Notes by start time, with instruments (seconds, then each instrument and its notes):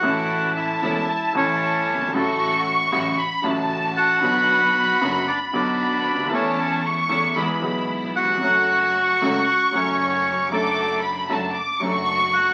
Already playing: bandoneon F#4 F#5
0.01 upright piano A1 A2 E3 A3 C#4 A4, double bass A1, string section A3 C#4 E4, violin section A5
0.57 bandoneon E4 E5
0.82 upright piano E1 E2 E3 A3 C#4 A4, double bass E1, string section A3 C#4 E4
1.33 upright piano A1 A2 E3 A3 C#4, double bass A1, string section A3 C#4 E4, bandoneon C#4 C#5
1.37 upright piano A4
1.88 double bass G1
1.94 upright piano F#1
2.01 upright piano G1
2.07 upright piano G#1
2.12 upright piano A1 A2 C#3 F#3 A3 F#4, double bass A1, string section A3 C#4 F#4, bandoneon A3 A4, violin section C#6
2.91 upright piano A1 A2 C#3 F#3 A3 F#4, double bass A1, string section A3 C#4 F#4
3.18 violin section B5
3.42 upright piano A1 A2 C#3 F#3 A3 F#4, double bass A1, string section A3 C#4 F#4, violin section A5
3.97 bandoneon F#4 F#5
4.21 upright piano B1 B2 D3 F#3 B3, double bass B1, string section B3 D4 F#4, violin section B5
4.25 upright piano F#4
5.01 double bass F#1, upright piano F#1 F#2 D3 F#3 B3 F#4, string section B3 D4 F#4
5.28 bandoneon D4 D5
5.52 upright piano B1 B2 D3 F#3 B3 F#4, double bass B1, string section B3 D4 F#4, bandoneon D4 D5
5.79 violin section B5
6.05 double bass D2
6.12 upright piano C#2
6.18 upright piano D2
6.25 upright piano D#2
6.29 upright piano E2 E3 A3 C#4 A4, double bass E2, string section A3 C#4 E4, violin section A5
6.33 bandoneon C#4 C#5
6.85 violin section C#6
7.09 upright piano E2 E3 A3 C#4 A4, double bass E2, string section A3 C#4 E4
7.36 double bass E2, upright piano E2 E3 G#3 B3 G#4, string section G#3 B3 E4, violin section B5
7.60 upright piano B1 B2 E3 G#3 B3, double bass B1, string section G#3 B3 E4
7.64 upright piano G#4
8.16 bandoneon F#4 F#5
8.22 upright piano D#2
8.28 upright piano E2
8.36 upright piano F2
8.40 double bass F#1, upright piano F#2 F#3 A3 C#4 A4, string section A3 C#4 F#4, violin section C#6
9.21 double bass C#2, upright piano C#2 C#3 F#3 A3 C#4 A4, string section A3 C#4 F#4
9.71 double bass F#1, upright piano F#2 F#3 A3 C#4, string section A3 C#4 F#4
9.75 bandoneon C#4 C#5, upright piano A4
10.49 double bass F#1, upright piano F#2 F#3 A3 D4 A4, string section A3 D4 F#4, bandoneon A3, violin section D6
10.53 bandoneon A4
11.03 violin section B5
11.28 double bass F#1, upright piano F#2 F#3 A3 D4 A4, string section A3 D4 F#4, violin section A5
11.55 violin section D6
11.80 double bass F#1, upright piano F#2 F#3 A3 D4 A4, string section A3 D4 F#4, violin section C#6
12.33 bandoneon F#4 F#5